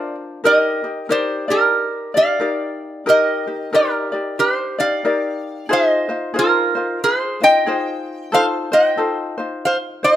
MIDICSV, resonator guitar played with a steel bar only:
0, 0, Header, 1, 2, 480
1, 0, Start_track
1, 0, Key_signature, -3, "major"
1, 0, Tempo, 657174
1, 316, Time_signature, 4, 2, 24, 8
1, 7423, End_track
2, 0, Start_track
2, 0, Title_t, "Resonator guitar played with a steel bar"
2, 0, Program_c, 0, 25
2, 0, Note_on_c, 0, 74, 69
2, 0, Note_on_c, 0, 77, 94
2, 106, Note_off_c, 0, 74, 0
2, 107, Note_off_c, 0, 77, 0
2, 331, Note_on_c, 0, 70, 74
2, 339, Note_on_c, 0, 75, 93
2, 774, Note_off_c, 0, 70, 0
2, 807, Note_on_c, 0, 67, 59
2, 817, Note_on_c, 0, 72, 89
2, 821, Note_off_c, 0, 75, 0
2, 1071, Note_off_c, 0, 67, 0
2, 1098, Note_on_c, 0, 67, 62
2, 1102, Note_off_c, 0, 72, 0
2, 1105, Note_on_c, 0, 70, 82
2, 1542, Note_off_c, 0, 67, 0
2, 1545, Note_off_c, 0, 70, 0
2, 1583, Note_on_c, 0, 74, 72
2, 1587, Note_on_c, 0, 77, 89
2, 2215, Note_off_c, 0, 74, 0
2, 2255, Note_on_c, 0, 70, 71
2, 2261, Note_on_c, 0, 75, 92
2, 2266, Note_off_c, 0, 77, 0
2, 2695, Note_off_c, 0, 70, 0
2, 2735, Note_on_c, 0, 67, 67
2, 2740, Note_on_c, 0, 70, 80
2, 2742, Note_off_c, 0, 75, 0
2, 3176, Note_off_c, 0, 67, 0
2, 3207, Note_on_c, 0, 67, 59
2, 3209, Note_off_c, 0, 70, 0
2, 3212, Note_on_c, 0, 72, 83
2, 3470, Note_off_c, 0, 67, 0
2, 3501, Note_off_c, 0, 72, 0
2, 3504, Note_on_c, 0, 74, 75
2, 3509, Note_on_c, 0, 77, 96
2, 4135, Note_off_c, 0, 74, 0
2, 4182, Note_on_c, 0, 72, 80
2, 4183, Note_off_c, 0, 77, 0
2, 4186, Note_on_c, 0, 75, 99
2, 4620, Note_off_c, 0, 72, 0
2, 4663, Note_off_c, 0, 75, 0
2, 4665, Note_on_c, 0, 70, 92
2, 4666, Note_on_c, 0, 65, 71
2, 5101, Note_off_c, 0, 65, 0
2, 5138, Note_off_c, 0, 70, 0
2, 5140, Note_on_c, 0, 72, 92
2, 5141, Note_on_c, 0, 68, 67
2, 5398, Note_off_c, 0, 68, 0
2, 5425, Note_off_c, 0, 72, 0
2, 5430, Note_on_c, 0, 75, 81
2, 5433, Note_on_c, 0, 79, 110
2, 6058, Note_off_c, 0, 75, 0
2, 6091, Note_off_c, 0, 79, 0
2, 6094, Note_on_c, 0, 77, 102
2, 6098, Note_on_c, 0, 72, 82
2, 6169, Note_off_c, 0, 77, 0
2, 6173, Note_off_c, 0, 72, 0
2, 6377, Note_on_c, 0, 79, 90
2, 6381, Note_on_c, 0, 75, 80
2, 7013, Note_off_c, 0, 75, 0
2, 7047, Note_off_c, 0, 79, 0
2, 7050, Note_on_c, 0, 77, 88
2, 7059, Note_on_c, 0, 72, 75
2, 7126, Note_off_c, 0, 77, 0
2, 7133, Note_off_c, 0, 72, 0
2, 7336, Note_on_c, 0, 75, 92
2, 7340, Note_on_c, 0, 72, 74
2, 7423, Note_off_c, 0, 72, 0
2, 7423, Note_off_c, 0, 75, 0
2, 7423, End_track
0, 0, End_of_file